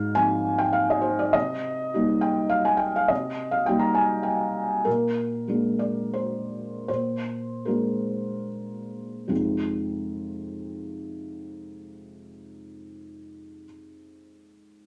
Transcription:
0, 0, Header, 1, 2, 480
1, 0, Start_track
1, 0, Tempo, 584795
1, 1101, Time_signature, 3, 2, 24, 8
1, 3986, Tempo, 634921
1, 4946, Tempo, 747198
1, 5426, Tempo, 806452
1, 6866, Tempo, 782269
1, 10284, End_track
2, 0, Start_track
2, 0, Title_t, "Felt piano"
2, 0, Program_c, 0, 0
2, 0, Control_c, 0, 64, 127
2, 0, Note_on_c, 0, 44, 62
2, 0, Note_on_c, 0, 77, 86
2, 123, Note_on_c, 0, 80, 96
2, 127, Note_off_c, 0, 44, 0
2, 132, Note_on_c, 0, 53, 43
2, 134, Note_on_c, 0, 60, 48
2, 137, Note_off_c, 0, 77, 0
2, 138, Note_on_c, 0, 63, 49
2, 479, Note_on_c, 0, 79, 88
2, 489, Note_off_c, 0, 80, 0
2, 595, Note_on_c, 0, 77, 89
2, 610, Note_off_c, 0, 79, 0
2, 728, Note_off_c, 0, 77, 0
2, 739, Note_on_c, 0, 75, 77
2, 833, Note_on_c, 0, 72, 70
2, 861, Note_off_c, 0, 75, 0
2, 967, Note_off_c, 0, 72, 0
2, 976, Note_on_c, 0, 74, 83
2, 1062, Note_off_c, 0, 53, 0
2, 1063, Note_off_c, 0, 60, 0
2, 1065, Note_off_c, 0, 63, 0
2, 1091, Note_on_c, 0, 75, 96
2, 1098, Note_off_c, 0, 74, 0
2, 1103, Note_on_c, 0, 48, 62
2, 1115, Control_c, 0, 64, 0
2, 1249, Control_c, 0, 64, 127
2, 1568, Note_off_c, 0, 48, 0
2, 1591, Note_on_c, 0, 55, 44
2, 1599, Note_on_c, 0, 63, 51
2, 1603, Note_on_c, 0, 58, 47
2, 1816, Note_on_c, 0, 79, 76
2, 1821, Note_off_c, 0, 75, 0
2, 2047, Note_on_c, 0, 77, 83
2, 2062, Note_off_c, 0, 79, 0
2, 2174, Note_on_c, 0, 80, 80
2, 2177, Note_off_c, 0, 77, 0
2, 2274, Note_on_c, 0, 79, 77
2, 2299, Note_off_c, 0, 80, 0
2, 2408, Note_off_c, 0, 79, 0
2, 2429, Note_on_c, 0, 77, 78
2, 2515, Note_off_c, 0, 55, 0
2, 2519, Note_off_c, 0, 63, 0
2, 2520, Note_off_c, 0, 58, 0
2, 2531, Note_on_c, 0, 75, 87
2, 2541, Note_on_c, 0, 48, 59
2, 2545, Note_off_c, 0, 77, 0
2, 2558, Control_c, 0, 64, 0
2, 2692, Control_c, 0, 64, 127
2, 2884, Note_on_c, 0, 77, 76
2, 2895, Note_off_c, 0, 75, 0
2, 3006, Note_off_c, 0, 48, 0
2, 3006, Note_on_c, 0, 79, 80
2, 3012, Note_off_c, 0, 77, 0
2, 3018, Note_on_c, 0, 58, 44
2, 3023, Note_on_c, 0, 63, 47
2, 3025, Note_on_c, 0, 55, 44
2, 3113, Note_on_c, 0, 82, 74
2, 3133, Note_off_c, 0, 79, 0
2, 3239, Note_on_c, 0, 80, 68
2, 3247, Note_off_c, 0, 82, 0
2, 3473, Note_on_c, 0, 79, 61
2, 3490, Note_off_c, 0, 80, 0
2, 3951, Note_off_c, 0, 58, 0
2, 3954, Note_off_c, 0, 63, 0
2, 3955, Note_off_c, 0, 55, 0
2, 3971, Note_off_c, 0, 79, 0
2, 3978, Note_on_c, 0, 70, 74
2, 3991, Note_on_c, 0, 46, 51
2, 4001, Control_c, 0, 64, 0
2, 4139, Control_c, 0, 64, 127
2, 4436, Note_off_c, 0, 46, 0
2, 4455, Note_on_c, 0, 56, 35
2, 4460, Note_on_c, 0, 58, 36
2, 4468, Note_on_c, 0, 62, 42
2, 4686, Note_off_c, 0, 70, 0
2, 4693, Note_on_c, 0, 74, 60
2, 4947, Note_off_c, 0, 74, 0
2, 4952, Note_on_c, 0, 72, 60
2, 5403, Note_off_c, 0, 56, 0
2, 5405, Note_off_c, 0, 58, 0
2, 5409, Note_off_c, 0, 62, 0
2, 5423, Note_off_c, 0, 72, 0
2, 5432, Note_on_c, 0, 72, 65
2, 5437, Note_on_c, 0, 46, 43
2, 5441, Control_c, 0, 64, 0
2, 5588, Control_c, 0, 64, 127
2, 5890, Note_off_c, 0, 46, 0
2, 5890, Note_on_c, 0, 70, 42
2, 5899, Note_on_c, 0, 56, 32
2, 5901, Note_off_c, 0, 72, 0
2, 5902, Note_on_c, 0, 58, 31
2, 5906, Note_on_c, 0, 62, 34
2, 6367, Note_off_c, 0, 70, 0
2, 6842, Note_off_c, 0, 56, 0
2, 6843, Note_off_c, 0, 58, 0
2, 6846, Note_off_c, 0, 62, 0
2, 6857, Note_on_c, 0, 41, 45
2, 6857, Note_on_c, 0, 56, 38
2, 6862, Note_on_c, 0, 48, 37
2, 6865, Note_on_c, 0, 65, 38
2, 6867, Note_on_c, 0, 63, 38
2, 6868, Note_on_c, 0, 60, 42
2, 6882, Control_c, 0, 64, 0
2, 7027, Control_c, 0, 64, 127
2, 9527, Note_off_c, 0, 41, 0
2, 9527, Note_off_c, 0, 56, 0
2, 9533, Note_off_c, 0, 48, 0
2, 9535, Note_off_c, 0, 65, 0
2, 9537, Note_off_c, 0, 63, 0
2, 9539, Note_off_c, 0, 60, 0
2, 10284, End_track
0, 0, End_of_file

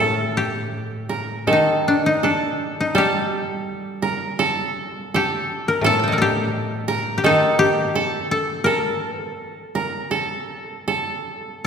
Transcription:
0, 0, Header, 1, 4, 480
1, 0, Start_track
1, 0, Tempo, 747198
1, 1907, Time_signature, 4, 2, 24, 8
1, 1907, Tempo, 718563
1, 3827, Tempo, 705882
1, 6227, Tempo, 732601
1, 6707, Tempo, 775194
1, 7674, End_track
2, 0, Start_track
2, 0, Title_t, "Koto"
2, 0, Program_c, 0, 107
2, 0, Note_on_c, 0, 69, 55
2, 703, Note_on_c, 0, 70, 47
2, 741, Note_off_c, 0, 69, 0
2, 946, Note_on_c, 0, 69, 54
2, 985, Note_off_c, 0, 70, 0
2, 1431, Note_off_c, 0, 69, 0
2, 1434, Note_on_c, 0, 69, 50
2, 1891, Note_off_c, 0, 69, 0
2, 1893, Note_on_c, 0, 69, 62
2, 2612, Note_on_c, 0, 70, 56
2, 2652, Note_off_c, 0, 69, 0
2, 2857, Note_on_c, 0, 69, 66
2, 2897, Note_off_c, 0, 70, 0
2, 3357, Note_off_c, 0, 69, 0
2, 3360, Note_on_c, 0, 69, 57
2, 3825, Note_off_c, 0, 69, 0
2, 3828, Note_on_c, 0, 69, 67
2, 4532, Note_on_c, 0, 70, 63
2, 4573, Note_off_c, 0, 69, 0
2, 4779, Note_on_c, 0, 69, 64
2, 4820, Note_off_c, 0, 70, 0
2, 5260, Note_off_c, 0, 69, 0
2, 5263, Note_on_c, 0, 69, 60
2, 5740, Note_off_c, 0, 69, 0
2, 5743, Note_on_c, 0, 69, 60
2, 6475, Note_on_c, 0, 70, 55
2, 6514, Note_off_c, 0, 69, 0
2, 6710, Note_on_c, 0, 69, 55
2, 6747, Note_off_c, 0, 70, 0
2, 7182, Note_off_c, 0, 69, 0
2, 7185, Note_on_c, 0, 69, 50
2, 7674, Note_off_c, 0, 69, 0
2, 7674, End_track
3, 0, Start_track
3, 0, Title_t, "Koto"
3, 0, Program_c, 1, 107
3, 0, Note_on_c, 1, 67, 57
3, 0, Note_on_c, 1, 69, 58
3, 236, Note_off_c, 1, 67, 0
3, 238, Note_on_c, 1, 67, 65
3, 624, Note_off_c, 1, 67, 0
3, 624, Note_on_c, 1, 68, 65
3, 694, Note_off_c, 1, 68, 0
3, 694, Note_on_c, 1, 67, 65
3, 980, Note_on_c, 1, 63, 56
3, 1199, Note_off_c, 1, 69, 0
3, 1207, Note_on_c, 1, 62, 58
3, 1246, Note_off_c, 1, 63, 0
3, 1325, Note_on_c, 1, 63, 54
3, 1363, Note_off_c, 1, 62, 0
3, 1440, Note_on_c, 1, 62, 51
3, 1478, Note_off_c, 1, 63, 0
3, 1549, Note_off_c, 1, 67, 0
3, 1802, Note_on_c, 1, 63, 54
3, 1841, Note_off_c, 1, 62, 0
3, 1915, Note_on_c, 1, 67, 60
3, 3277, Note_off_c, 1, 67, 0
3, 3363, Note_off_c, 1, 63, 0
3, 3370, Note_on_c, 1, 67, 60
3, 3720, Note_on_c, 1, 70, 54
3, 3841, Note_on_c, 1, 69, 62
3, 3881, Note_off_c, 1, 70, 0
3, 3929, Note_on_c, 1, 81, 30
3, 3958, Note_on_c, 1, 79, 37
3, 3986, Note_on_c, 1, 75, 37
3, 4016, Note_on_c, 1, 74, 40
3, 4024, Note_on_c, 1, 70, 43
3, 4053, Note_off_c, 1, 69, 0
3, 4056, Note_on_c, 1, 69, 46
3, 4065, Note_off_c, 1, 81, 0
3, 4078, Note_off_c, 1, 67, 0
3, 4081, Note_on_c, 1, 67, 67
3, 4731, Note_off_c, 1, 67, 0
3, 4734, Note_on_c, 1, 67, 49
3, 4792, Note_on_c, 1, 63, 68
3, 4833, Note_off_c, 1, 74, 0
3, 4873, Note_off_c, 1, 79, 0
3, 5012, Note_off_c, 1, 67, 0
3, 5015, Note_on_c, 1, 67, 79
3, 5037, Note_off_c, 1, 75, 0
3, 5274, Note_off_c, 1, 70, 0
3, 5350, Note_off_c, 1, 69, 0
3, 5507, Note_on_c, 1, 69, 68
3, 5730, Note_on_c, 1, 70, 66
3, 5771, Note_off_c, 1, 63, 0
3, 5996, Note_off_c, 1, 70, 0
3, 5996, Note_on_c, 1, 71, 66
3, 6098, Note_off_c, 1, 71, 0
3, 6098, Note_on_c, 1, 72, 66
3, 6200, Note_off_c, 1, 72, 0
3, 6200, Note_on_c, 1, 73, 66
3, 6292, Note_off_c, 1, 73, 0
3, 6292, Note_on_c, 1, 74, 66
3, 6395, Note_off_c, 1, 67, 0
3, 6776, Note_off_c, 1, 69, 0
3, 7400, Note_off_c, 1, 74, 0
3, 7674, End_track
4, 0, Start_track
4, 0, Title_t, "Koto"
4, 0, Program_c, 2, 107
4, 0, Note_on_c, 2, 45, 37
4, 945, Note_on_c, 2, 51, 42
4, 949, Note_off_c, 2, 45, 0
4, 1893, Note_on_c, 2, 55, 46
4, 2376, Note_off_c, 2, 51, 0
4, 3342, Note_off_c, 2, 55, 0
4, 3808, Note_on_c, 2, 45, 49
4, 4775, Note_on_c, 2, 51, 44
4, 4776, Note_off_c, 2, 45, 0
4, 6222, Note_off_c, 2, 51, 0
4, 7674, End_track
0, 0, End_of_file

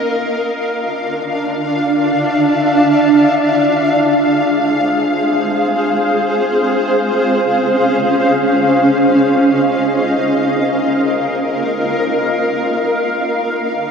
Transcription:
0, 0, Header, 1, 2, 480
1, 0, Start_track
1, 0, Key_signature, -4, "minor"
1, 0, Tempo, 500000
1, 13353, End_track
2, 0, Start_track
2, 0, Title_t, "Ambient pad"
2, 0, Program_c, 0, 92
2, 0, Note_on_c, 0, 70, 84
2, 0, Note_on_c, 0, 75, 75
2, 0, Note_on_c, 0, 77, 83
2, 222, Note_off_c, 0, 70, 0
2, 223, Note_off_c, 0, 75, 0
2, 237, Note_on_c, 0, 62, 70
2, 746, Note_on_c, 0, 74, 91
2, 1114, Note_on_c, 0, 76, 70
2, 1605, Note_on_c, 0, 81, 91
2, 3286, Note_off_c, 0, 74, 0
2, 3292, Note_off_c, 0, 81, 0
2, 3296, Note_off_c, 0, 76, 0
2, 3300, Note_off_c, 0, 62, 0
2, 3312, Note_on_c, 0, 68, 71
2, 3786, Note_on_c, 0, 72, 72
2, 6366, Note_on_c, 0, 61, 63
2, 7756, Note_on_c, 0, 75, 69
2, 9445, Note_on_c, 0, 70, 75
2, 10665, Note_off_c, 0, 61, 0
2, 10672, Note_off_c, 0, 72, 0
2, 10674, Note_off_c, 0, 68, 0
2, 12495, Note_on_c, 0, 62, 70
2, 12511, Note_off_c, 0, 70, 0
2, 12512, Note_off_c, 0, 75, 0
2, 13353, Note_off_c, 0, 62, 0
2, 13353, Note_off_c, 0, 77, 0
2, 13353, End_track
0, 0, End_of_file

